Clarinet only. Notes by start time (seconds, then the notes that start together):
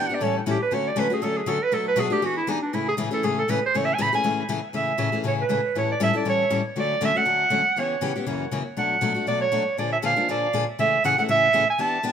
0.07 F#5
0.15 D5
0.22 C#5
0.39 E4
0.49 G4
0.62 B4
0.74 C#5
0.88 D5
0.99 B4
1.14 G#4
1.24 A4
1.37 G#4
1.49 A4
1.63 B4
1.74 A4
1.88 B4
1.99 G#4
2.13 G4
2.25 F#4
2.37 E4
2.50 D#4
2.62 D4
2.74 E4
2.89 G#4
3.14 A4
3.25 G#4
3.39 A4
3.50 B4
3.66 C5
3.77 C#5
3.85 E5
3.94 G#5
4.02 B5
4.15 G#5
4.76 E5
5.28 C#5
5.41 B4
5.78 C#5
5.92 D5
6.03 E5
6.17 D5
6.29 C#5
6.80 D5
7.05 E5
7.17 F#5
7.79 C#5
8.79 F#5
9.28 D5
9.41 C#5
9.79 D5
9.93 E5
10.06 F5
10.31 D5
10.80 E5
11.05 F#5
11.19 F#5
11.31 E5
11.70 G#5
11.81 A5